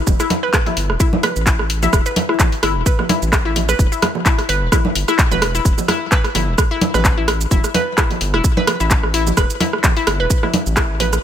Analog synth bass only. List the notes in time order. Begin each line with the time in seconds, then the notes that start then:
0.07 E1
0.77 G1
0.89 E1
1.36 A1
1.93 E1
2.63 G1
2.75 E1
3.22 A1
3.79 E1
4.49 G1
4.62 E1
4.95 G1
5.31 E1
5.65 E1
6.35 G1
6.48 E1
6.94 A1
7.51 E1
8.21 G1
8.34 E1
8.80 A1
9.37 E1
10.07 G1
10.20 E1
10.66 A1